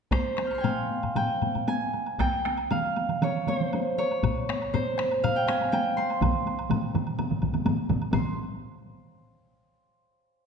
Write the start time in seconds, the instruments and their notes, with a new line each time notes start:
0.11 harp C5, taiko rim, taiko, taiko high, high woodblock
0.25 taiko high
0.38 taiko rim, taiko high, high woodblock
0.44 harp F6 G6
0.51 harp C6 C#6, taiko high, high woodblock
0.58 harp G5 G#5
0.64 harp F5, taiko low-mid, taiko high, high woodblock
0.78 taiko high
0.90 taiko high
1.03 taiko low-mid, taiko high, high woodblock
1.16 harp G5, taiko low-mid, taiko high, high woodblock
1.29 taiko high
1.42 taiko low-mid, taiko high, high woodblock
1.55 taiko low-mid, taiko high, high woodblock
1.68 harp G#5, taiko high, high woodblock
1.81 taiko high
1.93 taiko high, high woodblock
2.06 taiko high, high woodblock
2.19 harp G5, taiko rim, taiko, taiko high, high woodblock
2.33 taiko high
2.45 taiko rim, taiko high, high woodblock
2.58 taiko high, high woodblock
2.71 harp F5, taiko mid, taiko high, high woodblock
2.84 taiko high
2.96 taiko high, high woodblock
3.09 taiko mid, taiko high, high woodblock
3.22 harp C#5, taiko mid, taiko high, high woodblock
3.35 taiko high
3.47 harp C5, taiko mid, taiko high, high woodblock
3.60 taiko mid, taiko high
3.73 taiko high, high woodblock
3.86 taiko high
3.98 harp C#5, taiko high, high woodblock
4.11 taiko high, high woodblock
4.23 taiko, taiko low-mid, taiko high, high woodblock
4.36 taiko high
4.49 taiko rim, taiko high
4.61 taiko high, high woodblock
4.74 harp C5, taiko low-mid, taiko high, high woodblock
4.87 taiko high
4.99 taiko rim, taiko high, high woodblock
5.11 taiko high, high woodblock
5.24 harp F5, taiko low-mid, taiko high, high woodblock
5.36 harp G5, taiko high
5.47 harp G#5, taiko rim, taiko high, high woodblock
5.61 taiko high, high woodblock
5.72 harp G5, taiko high, high woodblock
5.86 taiko high
5.97 harp C6, taiko high, high woodblock
6.10 taiko high, high woodblock
6.21 taiko, taiko low-mid, taiko mid, taiko high, high woodblock
6.34 taiko high
6.46 taiko high, high woodblock
6.58 taiko high, high woodblock
6.70 taiko low-mid, taiko mid, taiko high, high woodblock
6.83 taiko high
6.94 taiko low-mid, taiko mid, taiko high, high woodblock
7.07 taiko high, high woodblock
7.19 taiko low-mid, taiko mid, taiko high, high woodblock
7.31 taiko low-mid, taiko mid, taiko high
7.42 taiko, taiko low-mid, taiko mid, taiko high, high woodblock
7.54 taiko low-mid, taiko mid, taiko high, high woodblock
7.65 taiko low-mid, taiko mid, taiko high, high woodblock
7.78 taiko high
7.89 taiko, taiko low-mid, taiko mid, taiko high, high woodblock
8.01 taiko high, high woodblock
8.12 harp C6, taiko, taiko low-mid, taiko mid, taiko high, high woodblock